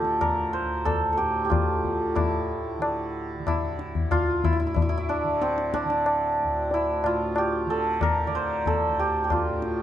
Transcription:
0.00 0.61 D2 medium
0.00 1.21 A2 soft
0.00 1.82 D3 medium
0.00 1.49 F4 medium
0.00 1.17 G4 medium
0.00 0.27 A4 medium
0.05 tabla te soft
0.21 0.91 A#4 medium
0.21 tabla na medium
0.21 tabla ge medium
0.53 3.17 C5 medium
0.62 3.99 D2 medium
0.85 1.12 A4 medium
0.85 tabla na medium
0.85 tabla ge medium
1.13 4.05 A4 medium
1.17 1.44 G4 medium
1.17 tabla te soft
1.22 2.15 A2 soft
1.45 4.59 G4 medium
1.50 2.21 F4 medium
1.50 tabla na medium
1.50 tabla ge medium
1.82 2.78 D3 medium
1.82 tabla ge soft
2.15 4.61 A2 medium
2.15 3.47 E4 medium
2.15 tabla na medium
2.15 tabla ge medium
2.78 3.38 D3 medium
2.78 tabla na medium
3.38 5.23 D3 soft
3.47 4.17 E4 medium
3.47 tabla na medium
3.47 tabla ge medium
3.79 tabla te medium
3.95 tabla ge soft
4.00 6.43 D2 medium
4.11 4.50 F4 loud
4.11 tabla na medium
4.11 tabla ge medium
4.44 4.52 E4 medium
4.44 tabla ge medium
4.53 4.59 E4 medium
4.60 7.03 A2 medium
4.60 4.66 E4 medium
4.67 4.74 E4 medium
4.74 4.82 E4 medium
4.74 tabla tin medium
4.74 tabla ge medium
4.82 4.89 E4 medium
4.89 4.97 E4 medium
4.97 6.73 E4 medium
5.09 5.74 D4 medium
5.23 5.84 D3 medium
5.42 9.42 C4 medium
5.42 tabla te medium
5.58 tabla te medium
5.74 9.47 D4 medium
5.74 tabla ke medium
5.84 7.66 D3 medium
5.90 tabla te medium
6.06 tabla na medium
6.44 8.88 D2 medium
6.71 7.12 E4 medium
6.71 tabla tin medium
7.04 9.49 A2 medium
7.04 9.31 F4 medium
7.04 tabla na medium
7.36 8.99 G4 medium
7.36 tabla na medium
7.66 8.27 D3 medium
7.66 8.09 A4 medium
8.01 8.73 A#4 medium
8.01 tabla na medium
8.01 tabla ge medium
8.27 9.82 D3 medium
8.27 9.82 D5 medium
8.35 9.82 C5 medium
8.66 9.82 A4 medium
8.66 tabla tin medium
8.66 tabla ge medium
8.88 9.82 D2 medium
8.99 9.24 G4 medium
9.24 9.82 G4 medium
9.30 9.82 F4 medium
9.30 tabla na medium
9.30 tabla ge medium
9.49 9.82 A2 medium
9.62 tabla te medium

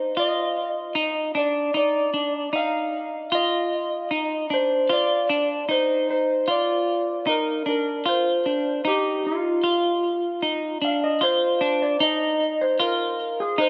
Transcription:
0.00 0.16 D#4 medium
0.00 0.14 C5 medium
0.17 0.95 F4 medium
0.17 1.40 D#5 medium
0.95 1.34 D#4 medium
1.35 1.74 D4 medium
1.35 1.76 D5 medium
1.74 2.13 D#4 medium
1.74 2.57 D5 loud
2.14 2.52 D4 medium
2.53 3.32 D#4 medium
2.53 3.34 F5 loud
3.32 4.11 F4 medium
3.32 4.55 D#5 medium
4.11 4.50 D#4 medium
4.50 4.90 D4 medium
4.50 4.93 C5 medium
4.89 5.29 F4 medium
4.89 5.72 D5 loud
5.29 5.68 D4 medium
5.69 6.48 D#4 medium
5.69 6.09 C5 medium
6.10 6.50 C5 medium
6.48 7.27 F4 medium
6.48 7.30 D5 medium
7.27 7.66 D#4 medium
7.27 7.68 A#4 medium
7.66 8.05 D4 medium
7.66 8.08 A#4 medium
8.06 8.45 F4 medium
8.06 8.88 C5 medium
8.46 8.84 D4 medium
8.85 9.64 D#4 medium
8.85 9.26 G4 medium
9.27 10.79 F4 medium
9.64 10.42 F4 medium
10.42 10.81 D#4 medium
10.82 11.21 D4 medium
10.82 11.03 F5 medium
11.04 11.23 D#5 medium
11.21 11.61 F4 medium
11.21 11.83 C5 loud
11.61 12.00 D4 medium
11.82 12.02 D5 medium
12.00 12.79 D#4 medium
12.00 12.63 D#5 loud
12.61 12.81 C5 medium
12.80 13.58 F4 medium
12.80 13.41 A#4 medium
13.40 13.60 G#4 medium
13.58 13.69 D#4 medium
13.58 13.69 C5 medium

